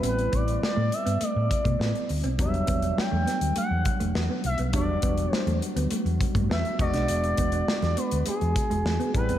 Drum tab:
HH |xxxx--xxx-xx-xox|xxxx--xxx-xx--xx|x-xx-xxxxxxx-xxx|xxxx-xxxxxxx-xxx|
SD |----o-------o---|----o-o-----o---|----o-------o--o|----oo------o---|
BD |--o-------oo----|o-o-------o-----|o-o-------oo--o-|--o-------o---o-|